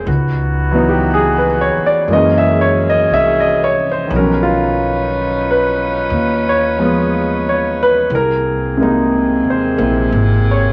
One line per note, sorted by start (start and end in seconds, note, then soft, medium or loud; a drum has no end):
0.00 0.10 C4 medium
0.05 1.71 C#2 medium
0.05 2.06 E3 medium
0.05 2.06 B3 medium
0.05 2.06 D#4 medium
0.05 2.06 F#4 medium
0.71 2.06 E3 medium
0.71 2.08 F#3 medium
0.71 2.09 B3 soft
0.76 2.09 D#4 medium
0.89 1.06 G4 medium
1.14 1.44 G#4 medium
1.38 1.73 B4 medium
1.61 1.84 C#5 medium
1.76 muted upright bass stroke soft
1.86 2.05 D5 medium
2.07 3.05 F#2 medium
2.07 4.09 E3 medium
2.07 3.91 F#3 medium
2.07 4.10 G#3 medium
2.07 3.91 A#3 medium
2.07 3.91 E4 medium
2.07 3.91 G#4 medium
2.11 4.11 A#3 soft
2.11 4.12 C#4 medium
2.11 2.44 D#5 medium
2.38 2.73 E5 medium
2.61 2.85 C#5 medium
2.90 3.07 D#5 medium
3.10 4.06 C2 medium
3.10 3.44 E5 medium
3.40 3.74 D#5 medium
3.64 3.86 C#5 medium
3.91 4.08 C5 medium
4.07 6.06 B1 medium
4.07 8.09 D#3 soft
4.07 6.77 F3 soft
4.07 8.06 C#4 medium
4.07 8.06 D#4 medium
4.07 8.06 F4 medium
4.07 8.06 B4 medium
4.14 8.12 F#3 soft
4.14 4.46 A#4 medium
4.19 8.15 C#4 medium
4.43 4.63 F4 medium
5.51 6.43 B4 medium
6.10 8.06 D#2 medium
6.49 7.42 C#5 medium
6.78 8.11 F3 soft
6.78 8.11 G#3 soft
6.78 8.12 B3 medium
7.49 7.79 C#5 medium
7.83 8.12 B4 medium
8.10 9.40 C2 medium
8.10 10.73 C3 medium
8.10 10.73 A#3 medium
8.10 10.73 C4 medium
8.10 10.73 G#4 medium
8.15 8.78 A#4 medium
8.77 10.73 C3 medium
8.77 10.73 G#3 soft
8.77 9.77 A#3 soft
8.82 10.73 D#4 medium
9.45 9.76 D#2 soft
9.50 10.44 C5 medium
9.78 10.09 A#1 medium
9.78 10.73 A#3 soft
9.78 10.73 C4 soft
9.78 10.73 E4 soft
10.12 10.73 G#1 medium
10.51 10.73 C#5 medium